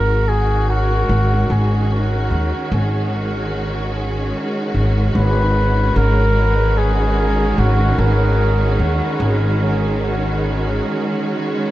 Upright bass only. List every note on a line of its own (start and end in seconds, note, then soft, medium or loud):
0.00 1.06 G#1 medium
1.09 1.46 G#1 medium
1.50 2.28 G#1 medium
2.31 2.51 D#2 medium
2.72 4.30 G#1 medium
4.74 5.11 G#1 medium
5.15 5.93 G#1 medium
5.96 7.55 G#1 medium
7.58 7.94 G#1 medium
7.98 8.76 G#1 medium
8.79 9.00 D#2 medium
9.20 10.79 G#1 loud